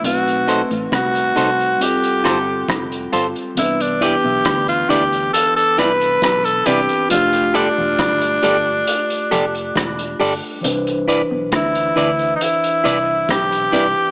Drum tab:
HH |xxxxxxxxxxx-xxxx|xxx-xxxxxxxxxxxx|xxx-xxx-xxxxxxo-|xxx-xxxxxxx-xxx-|
SD |----r-----r-r---|----r-----r-r---|----r-------r---|----r-------r---|
BD |----o-------o---|----o-------o---|----o-------o---|----o-------o---|